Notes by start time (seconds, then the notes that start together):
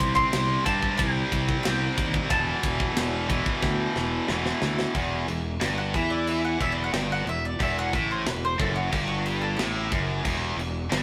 Already playing: C3 G3 C4 C6
0.00 C2, kick, ride
0.15 C6, kick
0.33 C2, snare, ride
0.65 G2 C3 G3 C4 A5, kick, ride
0.82 kick
0.98 C2 G5, kick, ride
1.32 C2, kick, ride
1.49 kick
1.63 C2 C3 G3 G5, snare, ride
1.67 C4
1.98 D#2, kick, ride
2.14 kick
2.30 E1 E2 B2 E3 A5, kick, ride
2.63 E1, kick, ride
2.80 kick
2.97 E1, snare, ride
3.29 E2 B2 E3, kick, ride
3.46 kick
3.62 D2 G5, kick, snare
3.96 E1, snare
4.28 E1 E2 B2 E3, snare
4.46 snare
4.62 D2, snare
4.79 snare
4.95 E1 E2, kick, crash
5.28 E1 E2, crash
5.60 G1 G2, snare, crash
5.78 F#5
5.94 E2 E3 E5, kick, crash
6.10 D5
6.27 E5, crash
6.45 F#5
6.60 E1 E2 E5, kick, crash
6.72 D5
6.84 F#5
6.93 G1 G2 G5, snare, crash
7.12 F#5
7.26 E1 E2 E5, crash
7.45 D5
7.60 E1 E2 E5, kick, crash
7.79 F#5
7.93 A1 A2 E5, kick, crash
8.11 C5
8.26 E1 E2 B4, snare, crash
8.45 C5
8.58 F#1 F#2 A4, kick, crash
8.76 F#4
8.92 G1 G2 G4, kick, crash
9.08 F#4
9.26 G4, crash
9.42 A4
9.57 A1 A2 G4, snare, crash
9.91 F#1 F#2, kick, crash
10.24 E1 E2, kick, crash
10.57 E1 E2, crash
10.90 G1 G2, snare, crash